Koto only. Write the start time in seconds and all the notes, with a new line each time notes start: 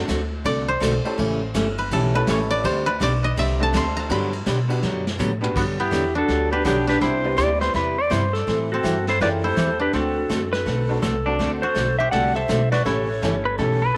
Already playing: C5 D5
0.46 D5
0.68 C5
1.79 B4
1.93 A4
2.15 B4
2.30 C#5
2.51 D5
2.65 C5
2.86 B4
3.03 D5
3.24 D#5
3.39 E5
3.63 A5
3.77 C6
3.97 A#5
4.12 B5
5.57 B3
5.80 B3
6.15 D4
6.53 D4
6.65 B3
6.87 D4
7.01 E4
8.74 C4
9.09 E4
9.21 G4
9.44 E4
9.80 D4
9.93 C4
11.63 F#4
12.00 G4
12.13 A4
12.36 A4
12.72 F#4
12.86 E4